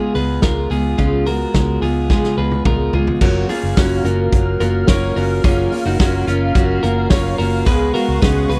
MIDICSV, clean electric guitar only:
0, 0, Header, 1, 2, 480
1, 0, Start_track
1, 0, Key_signature, 6, "major"
1, 0, Tempo, 556586
1, 851, Time_signature, 4, 2, 24, 8
1, 7412, End_track
2, 0, Start_track
2, 0, Title_t, "Clean electric guitar"
2, 0, Program_c, 0, 27
2, 0, Note_on_c, 0, 65, 54
2, 0, Note_on_c, 0, 68, 72
2, 126, Note_off_c, 0, 68, 0
2, 130, Note_on_c, 0, 71, 72
2, 133, Note_off_c, 0, 65, 0
2, 136, Note_on_c, 0, 68, 56
2, 366, Note_off_c, 0, 71, 0
2, 370, Note_on_c, 0, 70, 86
2, 373, Note_off_c, 0, 68, 0
2, 376, Note_on_c, 0, 65, 65
2, 608, Note_off_c, 0, 65, 0
2, 608, Note_off_c, 0, 70, 0
2, 611, Note_on_c, 0, 68, 78
2, 619, Note_on_c, 0, 65, 58
2, 836, Note_off_c, 0, 65, 0
2, 846, Note_on_c, 0, 65, 96
2, 851, Note_off_c, 0, 68, 0
2, 852, Note_on_c, 0, 61, 66
2, 1089, Note_off_c, 0, 65, 0
2, 1091, Note_on_c, 0, 70, 85
2, 1092, Note_off_c, 0, 61, 0
2, 1098, Note_on_c, 0, 66, 63
2, 1543, Note_off_c, 0, 70, 0
2, 1547, Note_off_c, 0, 66, 0
2, 1570, Note_on_c, 0, 68, 68
2, 1575, Note_on_c, 0, 65, 54
2, 1803, Note_off_c, 0, 68, 0
2, 1809, Note_off_c, 0, 65, 0
2, 1813, Note_on_c, 0, 68, 81
2, 1820, Note_on_c, 0, 65, 56
2, 2046, Note_off_c, 0, 68, 0
2, 2050, Note_on_c, 0, 71, 83
2, 2053, Note_off_c, 0, 65, 0
2, 2057, Note_on_c, 0, 68, 64
2, 2287, Note_off_c, 0, 71, 0
2, 2291, Note_on_c, 0, 70, 85
2, 2295, Note_off_c, 0, 68, 0
2, 2299, Note_on_c, 0, 65, 58
2, 2531, Note_off_c, 0, 65, 0
2, 2532, Note_off_c, 0, 70, 0
2, 2534, Note_on_c, 0, 68, 74
2, 2542, Note_on_c, 0, 65, 51
2, 2769, Note_off_c, 0, 68, 0
2, 2772, Note_on_c, 0, 70, 87
2, 2775, Note_off_c, 0, 65, 0
2, 2778, Note_on_c, 0, 66, 86
2, 3010, Note_off_c, 0, 70, 0
2, 3013, Note_on_c, 0, 68, 91
2, 3015, Note_off_c, 0, 66, 0
2, 3020, Note_on_c, 0, 65, 70
2, 3253, Note_off_c, 0, 65, 0
2, 3253, Note_off_c, 0, 68, 0
2, 3256, Note_on_c, 0, 66, 93
2, 3264, Note_on_c, 0, 61, 66
2, 3488, Note_off_c, 0, 66, 0
2, 3493, Note_on_c, 0, 70, 77
2, 3498, Note_off_c, 0, 61, 0
2, 3498, Note_on_c, 0, 66, 55
2, 3943, Note_off_c, 0, 70, 0
2, 3946, Note_off_c, 0, 66, 0
2, 3971, Note_on_c, 0, 70, 89
2, 3978, Note_on_c, 0, 66, 71
2, 4207, Note_off_c, 0, 70, 0
2, 4209, Note_on_c, 0, 73, 97
2, 4214, Note_off_c, 0, 66, 0
2, 4217, Note_on_c, 0, 70, 79
2, 4442, Note_off_c, 0, 70, 0
2, 4450, Note_off_c, 0, 73, 0
2, 4453, Note_on_c, 0, 70, 78
2, 4458, Note_on_c, 0, 66, 63
2, 4689, Note_off_c, 0, 70, 0
2, 4692, Note_on_c, 0, 68, 91
2, 4694, Note_off_c, 0, 66, 0
2, 4698, Note_on_c, 0, 65, 84
2, 5030, Note_off_c, 0, 68, 0
2, 5033, Note_off_c, 0, 65, 0
2, 5050, Note_on_c, 0, 66, 76
2, 5058, Note_on_c, 0, 63, 59
2, 5161, Note_off_c, 0, 66, 0
2, 5171, Note_on_c, 0, 66, 96
2, 5173, Note_off_c, 0, 63, 0
2, 5177, Note_on_c, 0, 61, 60
2, 5408, Note_off_c, 0, 61, 0
2, 5408, Note_off_c, 0, 66, 0
2, 5412, Note_on_c, 0, 65, 85
2, 5419, Note_on_c, 0, 61, 71
2, 5646, Note_off_c, 0, 61, 0
2, 5646, Note_off_c, 0, 65, 0
2, 5650, Note_on_c, 0, 66, 87
2, 5656, Note_on_c, 0, 61, 67
2, 5885, Note_off_c, 0, 66, 0
2, 5888, Note_on_c, 0, 70, 82
2, 5893, Note_off_c, 0, 61, 0
2, 5895, Note_on_c, 0, 66, 67
2, 6123, Note_off_c, 0, 70, 0
2, 6126, Note_on_c, 0, 73, 90
2, 6130, Note_off_c, 0, 66, 0
2, 6134, Note_on_c, 0, 70, 78
2, 6358, Note_off_c, 0, 70, 0
2, 6364, Note_off_c, 0, 73, 0
2, 6368, Note_on_c, 0, 70, 86
2, 6374, Note_on_c, 0, 66, 67
2, 6605, Note_off_c, 0, 70, 0
2, 6608, Note_on_c, 0, 71, 94
2, 6611, Note_off_c, 0, 66, 0
2, 6615, Note_on_c, 0, 68, 78
2, 6843, Note_off_c, 0, 71, 0
2, 6847, Note_on_c, 0, 70, 90
2, 6851, Note_off_c, 0, 68, 0
2, 6855, Note_on_c, 0, 66, 71
2, 7083, Note_off_c, 0, 66, 0
2, 7086, Note_on_c, 0, 68, 83
2, 7087, Note_off_c, 0, 70, 0
2, 7094, Note_on_c, 0, 61, 64
2, 7323, Note_off_c, 0, 68, 0
2, 7325, Note_on_c, 0, 71, 74
2, 7331, Note_off_c, 0, 61, 0
2, 7333, Note_on_c, 0, 68, 62
2, 7412, Note_off_c, 0, 68, 0
2, 7412, Note_off_c, 0, 71, 0
2, 7412, End_track
0, 0, End_of_file